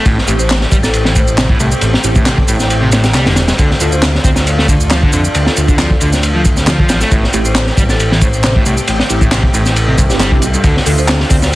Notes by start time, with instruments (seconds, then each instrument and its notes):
Already playing: analog synth pad A3
0.05 analog synth bass A1, overdriven electric guitar A2, analog synth pad C4 G4, kick, ride, shaker
0.18 snare
0.28 analog synth bass A1, overdriven electric guitar A2, tine electric piano C4 E4 G4, ride, shaker
0.39 vibraphone C5, shaker
0.50 snare, clap, ride, shaker
0.61 snare
0.72 analog synth bass A1, overdriven electric guitar G3, kick, ride, shaker
0.83 vibraphone A4, snare, shaker
0.93 ride, shaker
1.05 overdriven electric guitar E3, snare
1.16 overdriven electric guitar A2, vibraphone C5, kick, ride, shaker
1.27 vibraphone C5, shaker
1.38 overdriven electric guitar C3, snare, clap, ride, shaker
1.49 overdriven electric guitar A2, kick
1.60 analog synth bass C2, overdriven electric guitar A2, ride, shaker
1.72 shaker
1.81 analog synth bass A1, ride, shaker
1.94 snare
2.04 analog synth bass A1, tine electric piano C4 E4 G4, ride, shaker
2.16 overdriven electric guitar A2, kick, shaker
2.26 overdriven electric guitar C3, snare, clap, ride, shaker
2.38 kick
2.48 analog synth bass A1, overdriven electric guitar A2, ride, shaker
2.60 snare, shaker
2.70 ride, shaker
2.82 overdriven electric guitar C3
2.92 overdriven electric guitar A2, snare, ride, shaker
3.04 snare, ride, shaker
3.14 analog synth bass C2, overdriven electric guitar G3, snare, clap, ride, shaker
3.26 analog synth bass E1, overdriven electric guitar D3, tine electric piano C4 E4 G4, snare, ride
3.36 snare, ride, shaker
3.48 overdriven electric guitar G2, snare, ride, shaker
3.58 analog synth bass D2, overdriven electric guitar D3, analog synth pad D4 F4, kick, ride, shaker
3.71 snare
3.80 analog synth bass D2, overdriven electric guitar D3, tine electric piano D4 F4 A4, ride, shaker
3.92 vibraphone C5, shaker
4.02 snare, clap, ride, shaker
4.15 snare
4.24 analog synth bass D2, overdriven electric guitar C4, kick, ride, shaker
4.36 snare, shaker
4.47 ride, shaker
4.58 overdriven electric guitar A3, snare
4.68 overdriven electric guitar D3, kick, ride, shaker
4.80 shaker
4.91 overdriven electric guitar F3, snare, clap, ride, shaker
5.03 overdriven electric guitar D3, kick
5.13 analog synth bass F2, overdriven electric guitar D3, ride, shaker
5.25 shaker
5.35 analog synth bass D2, ride, shaker
5.46 vibraphone A4, snare
5.57 analog synth bass D2, tine electric piano D4 F4 A4, ride, shaker
5.68 overdriven electric guitar D3, kick, shaker
5.78 overdriven electric guitar F3, snare, clap, ride, shaker
5.91 kick
6.01 analog synth bass D2, overdriven electric guitar D3, ride, shaker
6.13 snare, shaker
6.23 ride, shaker
6.35 overdriven electric guitar F3
6.45 kick, ride, shaker
6.57 snare, shaker
6.67 overdriven electric guitar F3, snare, clap, ride, shaker
6.79 overdriven electric guitar F3, kick
6.89 analog synth bass A1, snare, ride, shaker
7.01 overdriven electric guitar A3, snare, shaker
7.11 analog synth bass A1, overdriven electric guitar A2, analog synth pad A3 C4 G4, kick, ride, shaker
7.24 snare
7.33 analog synth bass A1, overdriven electric guitar A2, tine electric piano C4 E4 G4, ride, shaker
7.45 vibraphone C5, shaker
7.55 snare, clap, ride, shaker
7.67 snare
7.77 analog synth bass A1, overdriven electric guitar G3, kick, ride, shaker
7.89 vibraphone A4, snare, shaker
8.00 ride, shaker
8.12 overdriven electric guitar E3, snare
8.21 overdriven electric guitar A2, vibraphone C5, kick, ride, shaker
8.33 vibraphone C5, shaker
8.44 overdriven electric guitar C3, snare, clap, ride, shaker
8.55 overdriven electric guitar A2, kick
8.66 analog synth bass C2, overdriven electric guitar A2, ride, shaker
8.77 shaker
8.88 analog synth bass A1, ride, shaker
9.00 snare
9.10 analog synth bass A1, tine electric piano C4 E4 G4, ride, shaker
9.21 overdriven electric guitar A2, kick, shaker
9.31 overdriven electric guitar C3, snare, clap, ride, shaker
9.43 kick
9.54 analog synth bass A1, overdriven electric guitar A2, ride, shaker
9.66 snare, shaker
9.76 ride, shaker
9.88 overdriven electric guitar C3
9.98 analog synth bass C2, overdriven electric guitar G2, kick, ride, shaker
10.10 analog synth bass G1, tine electric piano C4 E4 G4, snare, shaker
10.20 overdriven electric guitar G3, snare, clap, ride, shaker
10.32 overdriven electric guitar C3, tine electric piano C4 E4 G4, kick
10.42 analog synth bass C2, ride, shaker
10.54 overdriven electric guitar G2, shaker
10.64 analog synth bass D2, overdriven electric guitar D3, analog synth pad D4 F4, kick, ride, shaker
10.77 snare
10.86 analog synth bass D2, overdriven electric guitar D3, tine electric piano D4 F4 A4, open hi-hat, ride, shaker
10.98 vibraphone C5, shaker
11.08 snare, clap, ride, shaker
11.20 snare
11.30 analog synth bass D2, overdriven electric guitar C4, kick, open hi-hat, ride, shaker
11.42 snare, shaker